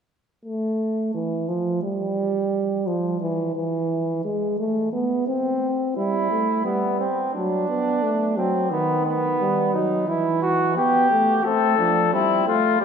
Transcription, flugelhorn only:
5.96 6.61 E4 medium
6.65 6.98 B3 medium
6.99 7.33 C4 medium
7.33 8.35 D4 medium
8.37 8.70 C4 medium
8.71 9.04 B3 medium
9.05 9.72 B3 medium
9.74 10.07 D#4 medium
10.08 10.41 E4 medium
10.42 10.76 F#4 medium
10.77 11.46 G4 medium
11.45 11.78 C4 medium
11.78 12.15 D4 medium
12.13 12.58 C4 medium
12.81 12.85 B3 medium

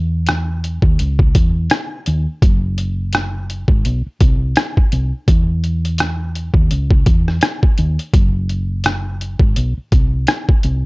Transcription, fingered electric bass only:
0.00 0.80 E2 loud
0.83 0.97 D#2 loud
1.00 1.32 C#2 loud
1.36 1.67 E2 medium
2.07 2.25 D#2 loud
2.43 3.66 F#1 loud
3.68 3.83 G#1 loud
3.86 4.04 B1 loud
4.06 muted fingered electric bass stroke soft
4.21 4.53 C2 medium
4.93 5.11 C2 loud
5.28 6.52 E2 loud
6.54 6.68 D#2 medium
6.71 7.03 C#2 loud
7.07 7.38 E2 medium
7.79 7.96 D#2 loud
8.14 9.37 F#1 loud
9.40 9.54 G#1 medium
9.57 9.75 B1 loud
9.77 muted fingered electric bass stroke soft
9.93 10.24 C2 medium
10.64 10.82 C2 loud

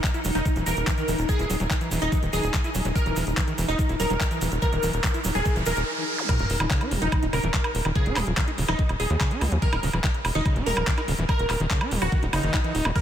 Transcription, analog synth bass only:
0.25 0.31 E1 loud
0.35 0.42 E1 medium
0.56 0.62 D#1 medium
0.66 0.73 D#1 loud
0.77 0.83 D#1 medium
1.08 1.15 D#1 medium
1.18 1.25 D#1 medium
1.39 1.46 D#1 medium
1.50 1.56 D#1 medium
1.60 1.67 D#1 medium
1.91 1.98 D#1 medium
2.02 2.08 D#1 medium
2.23 2.29 D#1 medium
2.33 2.40 D#1 loud
2.43 2.50 D#1 medium
2.75 2.81 D#1 loud
2.85 2.92 D#1 medium
3.06 3.12 D#1 medium
3.16 3.23 D#1 loud
3.27 3.33 D#1 medium
3.58 3.65 E1 loud
3.68 3.75 E1 medium
3.89 3.96 D#1 medium
4.00 4.06 D#1 loud
4.10 4.17 D#1 medium
4.41 4.48 D#1 loud
4.52 4.58 D#1 medium
4.73 4.79 D#1 medium
4.83 4.90 D#1 loud
4.93 5.00 D#1 medium
5.25 5.31 D#1 medium
5.35 5.42 D#1 medium
5.56 5.62 D#1 medium
5.66 5.73 D#1 loud
5.77 5.83 D#1 medium
6.39 6.46 D#1 medium
6.50 6.56 D#1 loud
6.60 6.67 D#1 medium
6.91 6.98 E1 loud
7.02 7.08 E1 medium
7.23 7.29 D#1 medium
7.33 7.40 D#1 loud
7.43 7.50 D#1 medium
7.75 7.81 D#1 loud
7.85 7.92 D#1 medium
8.06 8.12 D#1 medium
8.16 8.23 D#1 medium
8.27 8.33 D#1 medium
8.58 8.65 D#1 medium
8.68 8.75 D#1 medium
8.89 8.96 D#1 medium
9.00 9.06 D#1 medium
9.10 9.17 D#2 medium
9.41 9.48 C#2 medium
9.52 9.58 D#2 medium
9.73 9.79 D#1 medium
9.83 9.90 D#1 medium
9.93 10.00 D#1 medium
10.25 10.31 E1 loud
10.35 10.42 E1 medium
10.56 10.62 D#1 medium
10.66 10.73 D#1 loud
10.77 10.83 D#1 medium
11.08 11.15 D#1 medium
11.18 11.25 D#1 medium
11.39 11.46 D#1 medium
11.50 11.56 D#1 loud
11.60 11.67 D#1 medium
11.91 11.98 D#1 medium
12.02 12.08 D#1 medium
12.23 12.29 D#1 medium
12.33 12.40 F#1 loud
12.43 12.50 F#1 medium
12.75 12.81 D#1 medium
12.85 12.92 D#1 medium

